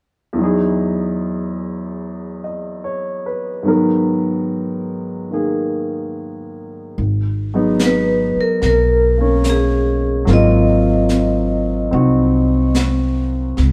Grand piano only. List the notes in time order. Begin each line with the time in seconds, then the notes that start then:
0.33 E2 E3
0.38 F#3 D#4
0.43 G#4
2.44 D#5
2.84 C#5
3.26 B4
3.63 G#2 D#3 F#3 B3
3.68 A#4
5.31 D#3 A#3 G#4
7.54 F#3 G#3 B3 D#4
9.18 A#3 C#4
10.25 F#3 A#3 C4
10.30 F4
11.91 C4 D#4 F#4